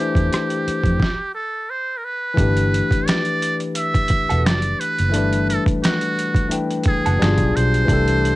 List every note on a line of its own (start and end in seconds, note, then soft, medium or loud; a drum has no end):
0.00 0.95 E3 medium
0.00 0.96 A3 medium
0.00 0.97 D4 medium
0.00 0.98 G4 medium
0.00 1.34 G4 medium
0.00 0.99 C5 medium
0.15 0.28 E2 medium
0.15 kick medium
0.15 closed hi-hat soft
0.33 cross-stick medium
0.33 closed hi-hat medium
0.50 closed hi-hat soft
0.68 muted fingered electric bass stroke soft
0.68 closed hi-hat medium
0.84 0.99 F2 medium
0.84 kick medium
0.84 closed hi-hat soft
1.00 kick medium
1.00 snare medium
1.35 1.72 A4 medium
1.70 1.99 C5 medium
1.98 2.06 A#4 medium
2.05 3.08 B4 medium
2.34 5.07 E3 medium
2.34 5.08 A3 medium
2.34 5.09 D4 medium
2.34 kick loud
2.38 2.80 G1 loud
2.38 5.10 G4 medium
2.38 5.12 B4 medium
2.38 closed hi-hat medium
2.57 closed hi-hat medium
2.74 closed hi-hat medium
2.91 kick medium
2.91 closed hi-hat soft
3.07 3.59 D5 loud
3.07 finger snap medium
3.07 snare medium
3.07 closed hi-hat medium
3.25 closed hi-hat soft
3.42 closed hi-hat medium
3.60 closed hi-hat soft
3.75 4.47 E5 loud
3.75 closed hi-hat loud
3.95 kick medium
3.95 closed hi-hat soft
4.08 muted fingered electric bass stroke soft
4.08 kick medium
4.08 closed hi-hat medium
4.30 4.47 E1 medium
4.30 4.45 B3 soft
4.30 4.44 F#4 soft
4.30 4.44 A4 medium
4.30 closed hi-hat soft
4.46 4.73 F#1 loud
4.46 4.82 D5 loud
4.46 finger snap medium
4.46 snare loud
4.46 closed hi-hat medium
4.62 closed hi-hat soft
4.80 5.48 B4 loud
4.80 closed hi-hat medium
4.99 5.15 F#1 medium
4.99 closed hi-hat medium
5.09 6.46 E3 medium
5.09 6.48 A3 medium
5.14 5.57 G1 loud
5.14 6.49 G3 medium
5.14 6.48 D4 medium
5.14 closed hi-hat medium
5.18 6.51 B4 medium
5.33 closed hi-hat medium
5.50 5.65 A4 medium
5.50 closed hi-hat medium
5.66 kick medium
5.66 closed hi-hat soft
5.84 6.56 F#4 loud
5.84 finger snap medium
5.84 snare medium
5.84 closed hi-hat medium
6.01 closed hi-hat medium
6.19 closed hi-hat medium
6.35 kick loud
6.35 closed hi-hat soft
6.49 7.19 E3 medium
6.49 7.19 A3 soft
6.49 7.20 D4 soft
6.49 7.20 G5 soft
6.49 closed hi-hat loud
6.53 7.21 B4 medium
6.71 closed hi-hat soft
6.84 muted fingered electric bass stroke soft
6.84 kick medium
6.84 closed hi-hat medium
6.88 7.57 G#4 medium
7.06 7.18 F#1 medium
7.06 7.21 B3 medium
7.06 7.20 F#4 medium
7.06 7.20 A4 medium
7.06 closed hi-hat medium
7.19 7.36 G1 loud
7.19 7.88 G3 medium
7.19 7.27 A#3 medium
7.19 7.88 D4 medium
7.19 7.90 F4 medium
7.19 finger snap medium
7.19 snare medium
7.19 closed hi-hat medium
7.23 7.92 B2 medium
7.23 7.90 G#4 medium
7.38 7.51 B1 medium
7.38 kick medium
7.38 closed hi-hat medium
7.56 7.83 B1 medium
7.56 8.36 C5 loud
7.56 closed hi-hat medium
7.74 closed hi-hat soft
7.85 8.36 E3 medium
7.85 8.36 A3 medium
7.85 8.36 D4 medium
7.85 kick loud
7.89 8.32 C2 medium
7.89 8.36 G4 medium
7.89 8.36 A4 medium
7.89 closed hi-hat medium
8.08 closed hi-hat medium
8.25 closed hi-hat medium